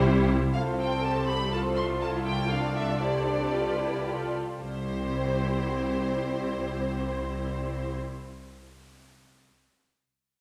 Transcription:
0.00 0.29 C2 loud
0.00 0.29 C3 medium
0.00 0.31 G3 medium
0.00 0.30 E4 medium
0.00 0.26 G4 medium
0.00 0.28 C5 loud
0.53 4.33 C2 soft
0.53 4.34 C2 soft
0.53 1.47 C4 soft
0.53 0.99 F4 soft
0.53 1.00 A4 soft
0.53 1.00 C5 soft
0.53 0.62 F5 medium
0.79 1.02 G5 medium
1.02 1.52 G4 soft
1.02 1.51 A4 soft
1.02 1.51 C5 soft
1.02 1.27 A5 medium
1.26 1.50 B5 medium
1.52 3.01 F4 soft
1.52 2.00 A4 soft
1.52 2.00 C5 soft
1.52 1.60 A5 medium
1.76 1.84 C6 medium
2.01 2.49 E4 soft
2.01 2.49 A4 soft
2.01 2.09 A5 medium
2.26 2.50 G5 medium
2.51 3.00 D4 soft
2.51 4.02 A4 soft
2.51 3.00 D5 soft
2.51 2.75 F5 medium
2.76 3.00 E5 medium
3.00 3.26 E4 soft
3.00 4.05 G4 soft
3.00 3.52 C5 soft
3.00 4.30 D5 medium
3.26 3.52 D4 soft
3.52 3.78 F4 soft
3.52 4.05 B4 soft
3.78 4.05 E4 soft
4.05 4.38 F4 soft
4.05 4.38 G4 soft
4.05 4.38 A4 soft
4.60 7.93 C2 soft
4.60 7.94 C4 soft
4.60 7.94 E4 soft
4.60 7.94 G4 soft
4.60 7.93 C5 soft

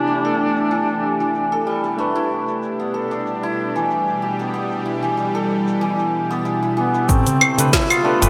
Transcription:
0.00 1.95 C3 medium
0.00 0.70 E3 medium
0.00 1.32 A3 medium
0.00 1.94 A3 medium
0.00 1.95 A3 medium
0.00 2.79 B3 medium
0.00 1.63 D4 medium
0.00 1.74 D4 medium
0.00 1.95 D4 medium
0.00 7.05 D4 medium
0.00 2.15 E4 medium
0.00 1.95 G4 medium
0.00 1.96 G4 medium
0.00 2.25 G4 medium
0.00 0.24 A4 medium
0.00 1.96 B4 medium
0.07 1.65 G3 medium
0.07 shaker soft
0.25 1.52 A4 medium
0.25 shaker soft
0.57 shaker medium
0.71 1.19 E3 medium
0.71 shaker soft
0.89 shaker soft
1.20 2.04 E3 medium
1.20 shaker medium
1.35 shaker medium
1.52 2.94 A4 medium
1.52 shaker soft
1.67 1.83 G3 medium
1.84 2.04 G3 medium
1.84 shaker medium
1.97 7.06 B2 medium
1.97 7.06 G3 medium
1.97 7.05 A3 medium
1.97 6.42 A3 medium
1.97 7.05 D4 medium
1.97 7.06 G4 medium
1.97 7.07 B4 medium
1.97 shaker soft
2.15 3.43 E4 medium
2.15 shaker soft
2.48 shaker medium
2.62 shaker soft
2.80 4.39 B3 medium
2.80 shaker soft
2.94 5.34 A4 medium
3.11 6.84 D4 medium
3.11 shaker medium
3.27 shaker soft
3.43 4.85 E4 medium
3.43 shaker soft
3.76 5.01 E3 medium
3.76 shaker medium
3.91 shaker soft
4.08 shaker soft
4.22 7.36 G4 medium
4.39 4.53 B3 medium
4.39 shaker medium
4.54 6.30 B3 medium
4.54 shaker soft
4.71 shaker soft
4.86 6.45 E4 medium
5.02 5.80 E3 medium
5.02 shaker medium
5.17 7.14 G3 medium
5.17 shaker soft
5.35 8.04 A4 medium
5.35 shaker soft
5.67 shaker medium
5.81 6.76 E3 medium
5.81 shaker soft
5.99 shaker soft
6.31 7.47 B3 loud
6.31 shaker medium
6.45 6.62 E4 medium
6.45 shaker medium
6.63 6.94 E4 medium
6.63 shaker soft
6.77 7.14 E3 medium
6.77 7.11 B3 medium
6.94 8.29 E4 medium
6.94 shaker medium
7.09 7.23 A1 medium
7.09 8.29 C3 medium
7.09 8.29 A3 loud
7.09 8.29 A3 medium
7.09 7.72 C4 loud
7.09 8.29 G4 loud
7.09 8.29 E5 medium
7.09 kick loud
7.09 shaker medium
7.26 closed hi-hat soft
7.26 darbuka dum medium
7.26 shaker soft
7.41 7.96 C4 medium
7.41 darbuka ka medium
7.41 darbuka tek medium
7.41 claves medium
7.58 7.73 A3 medium
7.58 7.73 D4 medium
7.58 7.74 G4 medium
7.58 7.74 B4 loud
7.58 closed hi-hat medium
7.58 darbuka dum medium
7.58 shaker medium
7.73 7.92 E4 loud
7.73 kick loud
7.73 snare loud
7.73 shaker medium
7.90 8.29 B3 loud
7.90 8.29 F4 loud
7.90 closed hi-hat soft
7.90 darbuka ka soft
7.90 claves medium
7.90 shaker soft
8.04 8.17 A3 loud
8.04 8.18 D4 medium
8.04 8.18 G4 medium
8.04 8.29 A4 loud
8.04 8.18 B4 loud
8.20 8.29 G1 loud
8.20 8.29 E3 medium
8.20 8.29 A3 medium
8.20 8.29 D4 medium
8.20 8.29 G4 medium
8.20 8.29 B4 loud
8.20 closed hi-hat medium
8.20 shaker medium

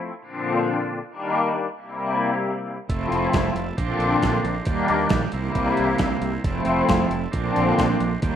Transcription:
0.00 0.21 F3 medium
0.00 0.22 A3 medium
0.00 0.23 C4 medium
0.00 0.23 E4 medium
0.21 1.10 A#2 medium
0.21 1.10 D3 medium
0.21 1.11 F3 medium
0.21 1.12 C4 medium
0.21 1.12 D4 medium
1.10 1.76 D#3 medium
1.10 1.76 G3 medium
1.10 1.77 A#3 medium
1.10 1.79 D4 medium
1.76 2.87 C3 medium
1.76 2.89 G3 medium
1.76 2.89 A#3 medium
1.76 2.89 E4 medium
2.87 3.05 F1 medium
2.87 3.77 F2 medium
2.87 3.76 C3 medium
2.87 3.77 F3 medium
2.87 3.78 A3 medium
2.87 3.78 C4 medium
2.87 3.78 E4 medium
2.87 3.77 E5 soft
2.87 3.77 A5 medium
2.87 kick loud
2.87 closed hi-hat medium
3.11 3.26 F1 medium
3.11 closed hi-hat medium
3.33 3.49 F1 medium
3.33 kick loud
3.33 snare loud
3.33 closed hi-hat medium
3.55 3.71 F1 medium
3.55 closed hi-hat medium
3.77 3.93 A#1 medium
3.77 4.66 A#2 medium
3.77 4.65 D3 medium
3.77 4.66 F3 medium
3.77 4.67 A#3 medium
3.77 4.67 C4 medium
3.77 4.65 D4 medium
3.77 4.67 D4 medium
3.77 4.67 F4 medium
3.77 4.65 C5 medium
3.77 4.65 A#5 medium
3.77 kick medium
3.77 closed hi-hat medium
3.99 4.15 A#1 medium
3.99 closed hi-hat medium
4.23 4.38 A#1 medium
4.23 kick loud
4.23 snare medium
4.23 closed hi-hat medium
4.44 4.60 A#1 medium
4.44 closed hi-hat soft
4.65 4.82 D#2 medium
4.65 5.31 D#3 medium
4.65 5.31 G3 medium
4.65 5.32 A#3 medium
4.65 5.34 D4 medium
4.65 5.32 D5 medium
4.65 5.32 G5 medium
4.65 kick loud
4.65 closed hi-hat medium
4.88 5.05 D#2 medium
4.88 closed hi-hat medium
5.09 5.26 A#1 medium
5.09 kick loud
5.09 snare loud
5.09 closed hi-hat medium
5.31 5.49 C2 medium
5.31 6.43 C3 medium
5.31 6.44 G3 medium
5.31 6.44 A#3 medium
5.31 6.43 E4 medium
5.31 6.45 E4 medium
5.31 6.43 C5 medium
5.31 6.43 A#5 medium
5.31 closed hi-hat medium
5.55 5.71 C2 medium
5.55 kick loud
5.55 closed hi-hat medium
5.77 5.94 C2 medium
5.77 closed hi-hat soft
5.98 6.15 C2 medium
5.98 kick medium
5.98 snare medium
5.98 closed hi-hat medium
6.21 6.37 C2 medium
6.21 closed hi-hat medium
6.43 6.60 F1 medium
6.43 7.33 F2 medium
6.43 7.32 C3 medium
6.43 7.33 F3 medium
6.43 7.33 A3 medium
6.43 7.34 C4 medium
6.43 7.33 E5 medium
6.43 7.32 A5 medium
6.43 kick loud
6.43 closed hi-hat medium
6.48 7.35 E4 medium
6.65 6.81 F1 medium
6.65 closed hi-hat medium
6.89 7.04 F1 medium
6.89 kick loud
6.89 snare loud
6.89 closed hi-hat medium
7.10 7.26 F1 medium
7.10 closed hi-hat medium
7.31 7.49 A#1 medium
7.31 8.22 A#2 medium
7.31 8.21 D3 medium
7.31 8.22 F3 medium
7.31 8.23 A#3 medium
7.31 8.23 C4 medium
7.31 8.20 D4 medium
7.31 8.20 C5 medium
7.31 8.20 A#5 medium
7.31 kick loud
7.31 closed hi-hat medium
7.36 8.23 D4 medium
7.56 7.72 A#1 medium
7.56 closed hi-hat medium
7.78 7.94 A#1 medium
7.78 kick medium
7.78 snare loud
7.78 closed hi-hat medium
8.00 8.16 A#1 medium
8.00 closed hi-hat medium
8.21 8.36 D#2 medium
8.21 8.36 D#3 medium
8.21 8.36 G3 medium
8.21 8.36 A#3 medium
8.21 8.36 D4 medium
8.21 8.36 D5 medium
8.21 8.36 G5 medium
8.21 kick loud
8.21 closed hi-hat medium

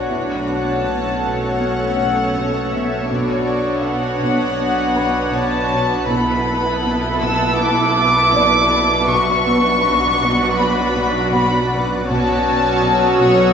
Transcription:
0.00 0.80 D4 soft
0.00 3.05 F#4 soft
0.00 3.08 C#5 soft
0.00 3.06 F#5 soft
0.00 0.43 A5 soft
0.09 6.05 B1 soft
0.09 6.06 B1 medium
0.09 6.06 B2 soft
0.09 0.32 B2 soft
0.09 3.05 A3 soft
0.09 2.31 E4 soft
0.09 3.10 A4 medium
0.09 3.10 C#5 medium
0.09 2.30 E5 soft
0.48 0.70 B3 soft
0.48 1.56 A5 medium
0.85 1.08 B2 soft
0.85 3.10 C#4 soft
1.23 1.45 B2 medium
1.61 1.83 B3 soft
1.61 2.72 F#5 medium
1.97 2.20 B2 soft
1.97 4.18 F#5 soft
2.35 2.57 B2 medium
2.73 2.95 B2 soft
2.73 3.10 E5 medium
3.08 3.33 B2 medium
3.08 6.06 B3 medium
3.08 6.09 D4 medium
3.08 6.06 D4 soft
3.08 6.05 F#4 medium
3.08 9.09 B4 medium
3.08 6.05 C#5 medium
3.08 3.84 D5 medium
3.08 6.04 F#5 medium
3.48 3.70 B3 soft
3.85 4.07 B2 soft
3.85 5.34 F#5 medium
4.22 4.44 B2 medium
4.59 4.82 B3 soft
4.96 5.19 B2 soft
4.96 7.17 B4 soft
4.96 7.18 B5 soft
5.34 5.56 B2 medium
5.34 6.09 A5 medium
5.72 5.94 B2 soft
6.08 12.05 B1 medium
6.08 12.05 B2 medium
6.08 6.32 B2 medium
6.08 9.05 B3 medium
6.08 9.05 E4 medium
6.08 9.05 A4 medium
6.08 12.06 B4 medium
6.08 9.09 E5 medium
6.08 9.09 A5 medium
6.08 7.22 B5 medium
6.46 6.69 B3 medium
6.84 7.07 B2 medium
7.21 7.44 B2 medium
7.21 7.59 E6 medium
7.58 7.82 B3 medium
7.58 9.06 D6 loud
7.96 8.19 B2 medium
8.34 8.56 B2 medium
8.34 10.55 D5 medium
8.72 8.94 B2 medium
9.09 9.31 B2 medium
9.09 12.06 F#3 medium
9.09 12.06 D4 medium
9.09 12.06 F#4 medium
9.09 12.06 B4 medium
9.09 12.10 D5 medium
9.09 13.53 F#5 medium
9.09 10.56 C#6 loud
9.47 9.70 B3 medium
9.85 10.07 B2 medium
10.22 10.45 B2 medium
10.60 10.82 B3 medium
10.60 11.33 B5 medium
10.97 11.19 B2 soft
11.34 11.56 B2 medium
11.34 11.71 B5 medium
11.72 11.94 B2 medium
12.09 13.53 B1 medium
12.09 13.53 B2 medium
12.09 12.32 B2 medium
12.09 13.53 F#3 medium
12.09 13.53 C#4 medium
12.09 13.53 F#4 medium
12.09 13.53 A4 medium
12.09 13.53 C#5 medium
12.09 13.18 A5 medium
12.09 13.53 C#6 soft
12.09 13.53 D#6 soft
12.09 13.53 E6 soft
12.47 12.69 B3 soft
12.84 13.06 B2 soft
13.21 13.44 B2 medium
13.21 13.53 F#5 medium

